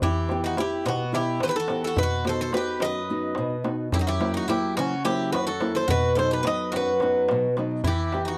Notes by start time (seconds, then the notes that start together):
0.02 E3 E4 G4, darbuka dum
0.16 darbuka tek
0.29 B3 E4 G4, darbuka tek
0.44 D#4 F#4
0.57 B3 E4 G4, darbuka tek
0.72 darbuka tek
0.85 B2 B3 F#4, darbuka tek
1.12 B3 E4 G4, darbuka tek
1.40 E3 B4 C5, darbuka tek
1.45 G4 A4
1.49 G4 B4
1.54 A4, darbuka tek
1.60 F#4
1.68 B3 E4 G4, darbuka tek
1.83 A4, darbuka tek
1.87 F#4
1.96 B2 B4, darbuka dum
2.03 F#4
2.11 darbuka tek
2.24 B3 D#4 F#4 C5, darbuka tek
2.29 A4
2.41 A4 C5
2.53 B3 D#4 F#4 B4, darbuka tek
2.57 G4
2.68 darbuka tek
2.80 F#2 D#5, darbuka tek
2.84 B4
3.10 B3 D#4 F#4
3.35 B2, darbuka tek
3.50 darbuka tek
3.64 B3 D#4 F#4, darbuka tek
3.92 F#2 E4 G4, darbuka dum
3.99 D#4 F#4
4.07 E4 G4, darbuka tek
4.20 F#3 A#3 E4, darbuka tek
4.34 D#4 F#4
4.48 F#3 A#3 E4 G4, darbuka tek
4.63 darbuka tek
4.77 C#3 C#4 F#4, darbuka tek
5.04 F#3 A#3 E4 G4, darbuka tek
5.32 F#2 F#4 B4, darbuka tek
5.47 F#4 A4, darbuka tek
5.60 F#3 A#3 E4, darbuka tek
5.75 A4 C5, darbuka tek
5.88 B2 F#4 B4, darbuka dum
6.15 F#3 B3 D#4 A4 C5, darbuka tek
6.31 G4 B4
6.43 F#3 B3 D#4 B4 D#5, darbuka tek
6.72 F#2 F#4, darbuka tek
6.76 B4
6.86 darbuka tek
7.00 F#3 B3 D#4, darbuka tek
7.15 darbuka tek
7.28 B2, darbuka tek
7.57 F#3 B3 D#4, darbuka tek
7.71 darbuka tek
7.84 E3 E4 G4, darbuka dum
7.99 darbuka tek
8.12 B3 E4 G4, darbuka tek
8.25 D#4 F#4